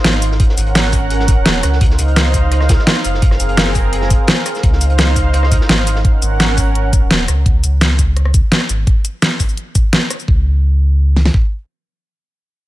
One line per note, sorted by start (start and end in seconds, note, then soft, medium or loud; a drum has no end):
0.00 0.39 D#4 medium
0.00 0.39 C5 medium
0.00 0.36 F5 medium
0.04 0.38 G#1 loud
0.04 snare loud
0.04 closed hi-hat medium
0.13 cross-stick soft
0.22 closed hi-hat loud
0.22 closed hi-hat medium
0.22 cabasa medium
0.31 snare soft
0.40 1.80 C#4 medium
0.40 1.80 A#4 medium
0.40 1.80 F#5 medium
0.40 kick loud
0.40 closed hi-hat medium
0.49 snare soft
0.58 1.36 G#1 medium
0.58 closed hi-hat medium
0.58 cabasa medium
0.67 closed hi-hat soft
0.75 snare loud
0.75 closed hi-hat medium
0.75 open hi-hat medium
0.75 cabasa soft
0.85 snare soft
0.93 kick medium
0.93 closed hi-hat medium
0.93 open hi-hat medium
0.93 cabasa medium
1.10 closed hi-hat medium
1.19 snare medium
1.28 kick loud
1.28 closed hi-hat loud
1.28 closed hi-hat medium
1.28 cabasa medium
1.37 1.62 D#1 medium
1.46 snare loud
1.46 closed hi-hat medium
1.63 1.97 C#2 medium
1.63 cross-stick medium
1.63 closed hi-hat medium
1.63 closed hi-hat loud
1.63 cabasa medium
1.73 snare soft
1.81 3.21 D#4 medium
1.81 3.21 C5 medium
1.81 4.61 F5 loud
1.81 kick loud
1.81 closed hi-hat medium
1.81 closed hi-hat loud
1.90 snare soft
1.98 2.77 C#2 medium
1.98 closed hi-hat medium
1.98 cabasa medium
2.08 closed hi-hat soft
2.16 snare loud
2.16 closed hi-hat medium
2.16 cabasa soft
2.34 kick medium
2.34 closed hi-hat medium
2.34 cabasa medium
2.52 cross-stick soft
2.52 closed hi-hat medium
2.60 cross-stick soft
2.60 snare soft
2.69 kick loud
2.69 snare loud
2.69 closed hi-hat medium
2.69 cabasa medium
2.79 snare medium
2.87 snare loud
2.87 closed hi-hat medium
2.96 cross-stick medium
3.05 3.39 F#1 medium
3.05 closed hi-hat medium
3.05 cabasa medium
3.14 snare soft
3.22 4.62 C4 medium
3.22 4.62 G#4 medium
3.22 4.62 A#4 medium
3.22 kick loud
3.22 closed hi-hat medium
3.31 cross-stick soft
3.31 snare soft
3.40 4.18 F#1 medium
3.40 closed hi-hat medium
3.40 cabasa medium
3.49 closed hi-hat soft
3.57 snare loud
3.57 closed hi-hat medium
3.57 open hi-hat medium
3.57 cabasa soft
3.67 snare medium
3.75 kick medium
3.75 closed hi-hat medium
3.75 open hi-hat medium
3.75 cabasa medium
3.93 closed hi-hat medium
4.01 snare medium
4.10 kick loud
4.10 closed hi-hat medium
4.10 cabasa medium
4.27 snare loud
4.27 closed hi-hat loud
4.27 closed hi-hat medium
4.46 cross-stick soft
4.46 closed hi-hat medium
4.46 cabasa medium
4.55 snare soft
4.55 cabasa soft
4.63 5.59 C#2 loud
4.63 6.03 D#4 medium
4.63 6.03 C5 medium
4.63 6.03 F5 medium
4.63 kick loud
4.63 closed hi-hat medium
4.73 snare soft
4.81 closed hi-hat medium
4.81 cabasa medium
4.90 closed hi-hat soft
4.98 snare loud
4.98 closed hi-hat medium
4.98 cabasa soft
5.16 kick medium
5.16 closed hi-hat medium
5.16 cabasa medium
5.33 cross-stick soft
5.33 closed hi-hat medium
5.43 cross-stick soft
5.43 snare soft
5.52 kick loud
5.52 closed hi-hat medium
5.52 cabasa medium
5.61 snare medium
5.69 6.03 G#1 medium
5.69 snare loud
5.69 closed hi-hat medium
5.78 cross-stick soft
5.87 closed hi-hat medium
5.87 cabasa medium
5.95 snare soft
6.04 7.44 C#4 medium
6.04 7.44 A#4 medium
6.04 7.44 F#5 medium
6.04 kick loud
6.04 closed hi-hat medium
6.22 7.00 G#1 medium
6.22 closed hi-hat medium
6.22 cabasa medium
6.40 snare loud
6.40 closed hi-hat medium
6.40 cabasa soft
6.58 kick medium
6.58 open hi-hat medium
6.58 cabasa medium
6.75 closed hi-hat medium
6.93 kick loud
6.93 closed hi-hat medium
6.93 cabasa medium
7.02 7.27 D#1 medium
7.11 snare loud
7.11 closed hi-hat medium
7.28 7.62 C#2 medium
7.28 cross-stick soft
7.28 closed hi-hat medium
7.28 cabasa medium
7.46 kick loud
7.46 closed hi-hat medium
7.64 8.42 C#2 medium
7.64 closed hi-hat loud
7.64 cabasa medium
7.81 snare loud
7.81 closed hi-hat medium
7.81 cabasa soft
7.99 kick medium
7.99 closed hi-hat medium
7.99 cabasa medium
8.17 cross-stick soft
8.17 closed hi-hat medium
8.25 cross-stick soft
8.34 kick loud
8.34 closed hi-hat loud
8.34 cabasa medium
8.52 snare loud
8.52 closed hi-hat medium
8.61 cross-stick soft
8.69 8.85 G#1 medium
8.69 closed hi-hat loud
8.69 cabasa medium
8.87 kick loud
8.87 closed hi-hat medium
9.05 closed hi-hat loud
9.05 cabasa medium
9.22 snare loud
9.22 closed hi-hat medium
9.22 cabasa soft
9.40 kick medium
9.40 open hi-hat medium
9.40 cabasa medium
9.49 cabasa soft
9.57 closed hi-hat medium
9.75 kick loud
9.75 closed hi-hat loud
9.75 cabasa medium
9.93 snare loud
9.93 closed hi-hat medium
10.10 cross-stick soft
10.10 closed hi-hat loud
10.10 cabasa medium
10.20 cabasa soft
10.28 11.30 C#2 loud
10.28 kick loud
11.16 snare medium
11.25 snare medium
11.34 kick medium